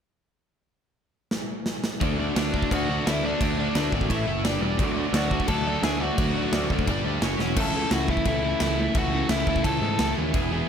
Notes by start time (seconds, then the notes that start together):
1.31 snare
1.66 snare
1.84 snare
2.00 D2 D3 A3 D4 F#4 A4 D5, kick, crash
2.18 D3 A3 D4 F#4 A4 D5
2.35 D2 D3 A3 D4 F#4 A4 D5, snare, crash
2.53 D3 A3 D4 F#4 A4 D5, kick
2.62 kick
2.71 D2 D3 A3 D4 F#4 A4 D5 F#5, kick, crash
2.88 D3 A3 D4 F#4 A4 D5
3.06 D2 D3 A3 D4 E4 F#4 A4 D5, snare, crash
3.11 E5
3.23 D3 A3 D4 F#4 A4 D5
3.41 D2 D3 A3 D4 F#4 A4 D5, kick, crash
3.58 D3 A3 D4 F#4 A4 D5
3.75 D2 D3 A3 D4 F#4 A4 D5, snare, crash
3.92 G#1 D3 A3 D4 F#4 A4 D5, kick
4.01 kick
4.08 A1 A3 E4 A4 E5, kick, crash
4.26 F#1 A3 E4 A4 E5
4.43 G1 G3 D4 G4 D5, snare, crash
4.61 E1 G3 D4 G4 D5
4.78 D2 D3 F#3 A3 D4 F#4 D5, kick, crash
4.95 D3 F#3 A3 D4 F#4 D5
5.11 D2 D3 F#3 A3 D4 F#4 D5, snare, crash
5.16 F#4 F#5
5.30 D3 F#3 A3 D4 F#4 D5, kick
5.40 kick
5.47 D2 D3 F#3 A3 D4 F#4 A4 D5 A5, kick, crash
5.65 D3 F#3 A3 D4 F#4 D5
5.82 D2 D3 F#3 A3 D4 F#4 G#4 D5 G#5, snare, crash
5.99 D3 F#3 A3 D4 F#4 D5 F#5
6.18 D2 D3 F#3 A3 D4 F#4 D5, kick, crash
6.34 D3 F#3 A3 D4 F#4 D5
6.52 D2 D3 F#3 A3 D4 F#4 D5, snare, crash
6.70 D2 D3 F#3 A3 D4 F#4 D5, kick
6.79 kick
6.87 G1 G3 D4 G4 D5, kick, crash
7.03 D2 G3 D4
7.07 G4 D5
7.21 F#1 F#3 C#4 F#4 C#5, snare, crash
7.38 E1 F#3 C#4 F#4 C#5, snare
7.56 C#2 C#3 E3 A3 E4 A4, kick, crash
7.60 A5
7.73 C#3 E3 A3 E4 A4
7.90 C#2 C#3 E3 A3 E4 F#4 A4 F#5, snare, crash
8.08 C#3 E3 A3 E4 A4 E5, kick
8.17 kick
8.25 C#2 C#3 E3 A3 E4 A4 E5, kick, crash
8.43 C#3 E3 A3 E4 A4
8.60 C#2 C#3 E3 A3 E4 A4 E5, snare, crash
8.77 C#3 E3 A3 E4 A4
8.95 C#2 C#3 E3 A3 E4 F#4 A4 F#5, kick, crash
9.13 C#3 E3 A3 E4 A4
9.29 C#2 C#3 E3 A3 E4 A4 E5, snare, crash
9.47 C#2 C#3 E3 A3 E4 A4, kick
9.56 kick
9.64 C#2 C#3 E3 A3 E4 A4 A5, kick, crash
9.81 G#2 C#3 E3 A3 E4 A4
9.98 C#2 C#3 E3 A3 E4 A4, snare, crash
10.16 D#2 C#3 E3 A3 E4 A4
10.34 E1 E3 B3 E4 G#4, kick, crash
10.51 E3 B3 E4 G#4